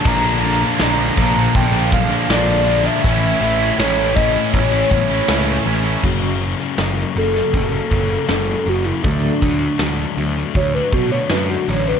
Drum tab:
CC |----------------|----------------|x---------------|----------------|
HH |o-o-o-o-o-o-o-o-|o-o-o-o-o-o-o-o-|--o-o-o-o-o-o-o-|o-o-o-o-o-o-o-o-|
SD |----o-------o---|----o-------o---|---oo--o----o---|----o-------o---|
BD |o-----o-o-o-----|o-----o-o-o-----|o-------o-o-----|o-o-----o-o-----|